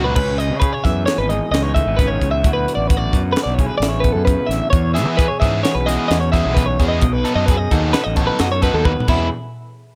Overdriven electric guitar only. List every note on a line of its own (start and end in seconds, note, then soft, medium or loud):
0.00 0.13 B2 medium
0.00 0.14 F#3 loud
0.00 0.14 A3 medium
0.00 0.14 D#4 medium
0.00 0.13 F#4 medium
4.95 5.26 G#3 medium
4.95 5.25 B3 medium
4.95 5.25 E4 medium
4.95 5.25 G#4 medium
5.41 5.71 G#3 medium
5.41 5.71 B3 medium
5.41 5.71 E4 medium
5.41 5.71 G#4 medium
5.87 6.17 G#3 medium
5.87 6.17 B3 medium
5.87 6.17 E4 medium
5.87 6.17 G#4 medium
6.33 6.63 G#3 medium
6.33 6.63 B3 medium
6.33 6.63 E4 medium
6.33 6.63 G#4 medium
6.80 7.03 G#3 medium
6.80 7.02 B3 medium
6.80 7.02 E4 medium
6.80 7.02 G#4 medium
7.24 7.55 F#3 medium
7.24 7.55 B3 medium
7.24 7.54 D#4 medium
7.24 7.54 A4 medium
7.72 8.01 F#3 medium
7.72 8.01 B3 medium
7.72 8.00 D#4 medium
7.72 8.01 A4 medium
8.17 8.47 F#3 medium
8.17 8.46 B3 medium
8.17 8.46 D#4 medium
8.17 8.46 A4 loud
8.62 8.92 F#3 medium
8.62 8.92 B3 medium
8.62 8.92 D#4 medium
8.62 8.92 A4 medium
9.08 9.26 E3 loud
9.08 9.26 G#3 loud
9.08 9.27 B3 loud
9.08 9.27 E4 loud